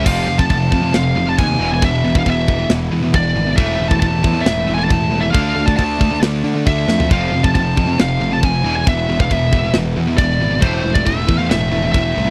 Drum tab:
CC |x---x---x---x---|x---x---x---x---|x---x---x---x---|x---x---x---x---|
SD |--------o-------|--------o-------|--------o-------|--------o-----o-|
FT |----------------|----------------|----------------|---------------o|
BD |o--oo-o-----o---|o--oo-o-----o---|o--oo-o-----o---|o--oo-o-----o---|

CC |x---x---x---x---|x---x---x---x---|x---x---x---x---|
SD |--------o-------|--------o-------|--------o-------|
FT |----------------|----------------|----------------|
BD |o--oo-o-----o---|o--oo-o-----o---|o--oo-o-----o---|